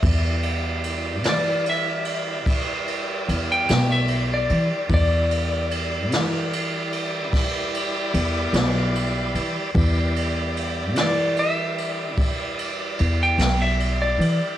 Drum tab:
RD |xxxxxxxxxxxx|xxxxxxxxxxxx|xxxxxxxxxxxx|
SD |---o-----o--|---o--o--o--|---o-----o--|
BD |o-----o-----|o-----o-----|o-----o-----|